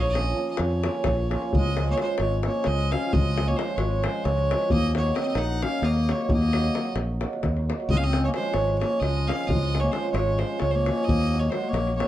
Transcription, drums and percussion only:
0.15 davul high medium
0.57 davul high medium
0.71 davul high soft
0.83 davul high medium
0.94 davul high soft
1.04 davul high medium
1.04 davul low medium
1.17 davul high soft
1.31 davul high medium
1.42 davul high soft
1.53 davul low medium
1.64 davul high soft
1.77 davul high medium
1.88 davul high soft
1.98 davul high medium
2.08 davul high soft
2.18 davul high medium
2.31 davul high soft
2.43 davul high medium
2.64 davul high medium
2.79 davul high soft
2.92 davul high medium
3.02 davul high soft
3.13 davul low medium
3.25 davul high soft
3.38 davul high medium
3.47 davul high soft
3.59 davul high medium
3.68 davul high soft
3.78 davul high medium
3.91 davul high soft
4.04 davul high medium
4.25 davul high medium
4.38 davul high soft
4.51 davul high medium
4.61 davul high soft
4.70 davul low medium
4.83 davul high soft
4.95 davul high medium
5.06 davul high soft
5.16 davul high medium
5.27 davul high soft
5.35 davul high medium
5.49 davul high soft
5.62 davul high medium
5.83 davul high medium
5.96 davul high soft
6.09 davul high medium
6.19 davul high soft
6.29 davul low medium
6.41 davul high soft
6.53 davul high medium
6.64 davul high soft
6.75 davul high medium
6.85 davul high soft
6.96 davul high medium
7.21 davul high medium
7.33 davul high soft
7.43 davul high medium
7.43 davul low medium
7.57 davul high soft
7.70 davul high medium
7.80 davul high soft
7.90 davul low medium
8.03 davul high soft
8.13 davul high medium
8.24 davul high soft
8.34 davul high medium
8.54 davul high medium
8.68 davul high soft
8.81 davul high medium
9.02 davul high medium
9.16 davul high soft
9.29 davul high medium
9.41 davul high soft
9.50 davul low medium
9.63 davul high soft
9.75 davul high medium
9.84 davul high soft
9.93 davul high medium
10.04 davul high soft
10.15 davul high medium
10.27 davul high soft
10.39 davul high medium
10.60 davul high medium
10.73 davul high soft
10.86 davul high medium
10.97 davul high soft
11.08 davul low medium
11.22 davul high soft
11.42 davul high soft
11.52 davul high medium
11.64 davul high soft
11.74 davul high medium
11.87 davul high soft
12.00 davul high medium

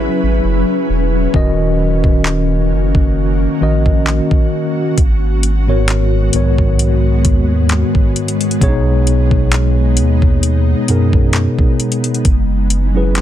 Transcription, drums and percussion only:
1.34 kick loud
2.04 kick medium
2.26 clap medium
2.95 kick medium
3.86 kick medium
4.07 clap loud
4.31 kick medium
4.98 kick loud
4.98 closed hi-hat medium
5.43 closed hi-hat medium
5.88 clap medium
5.88 closed hi-hat medium
6.33 closed hi-hat medium
6.58 kick medium
6.79 closed hi-hat medium
7.25 kick medium
7.25 closed hi-hat medium
7.69 clap loud
7.69 closed hi-hat medium
7.95 kick medium
8.16 closed hi-hat medium
8.28 closed hi-hat soft
8.41 closed hi-hat soft
8.51 closed hi-hat soft
8.61 kick loud
8.61 closed hi-hat medium
9.07 closed hi-hat medium
9.31 kick medium
9.52 clap loud
9.52 closed hi-hat medium
9.97 closed hi-hat medium
10.22 kick medium
10.43 closed hi-hat medium
10.88 closed hi-hat medium
11.13 kick medium
11.33 clap loud
11.33 closed hi-hat medium
11.59 kick medium
11.80 closed hi-hat medium
11.92 closed hi-hat medium
12.04 closed hi-hat soft
12.14 closed hi-hat soft
12.25 kick loud
12.25 closed hi-hat medium
12.70 closed hi-hat medium
13.15 clap medium
13.15 closed hi-hat medium

